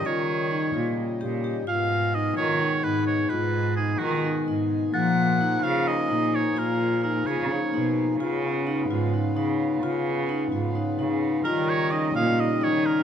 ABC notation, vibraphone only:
X:1
M:7/8
L:1/8
Q:1/4=129
K:G#dor
V:1 name="Vibraphone"
E2 D E2 =G G | E2 D E D D2 | E2 D E D D2 | E,2 D E D D2 |
E2 D E D D2 | E2 D E D D2 | E2 D E D D2 | E2 D E D D2 |]